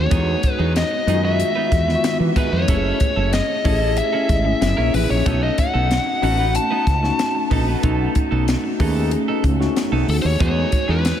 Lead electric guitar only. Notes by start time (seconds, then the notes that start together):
Already playing: C#5
0.52 B4
0.77 D#5
1.25 E5
2.37 B4
2.53 C#5
3.33 D#5
3.98 E5
4.95 B4
5.10 C#5
5.43 D#5
5.59 F#5
6.24 F#5
6.56 A5
10.10 A4
10.22 C5 C#5
10.42 C#5
10.90 B4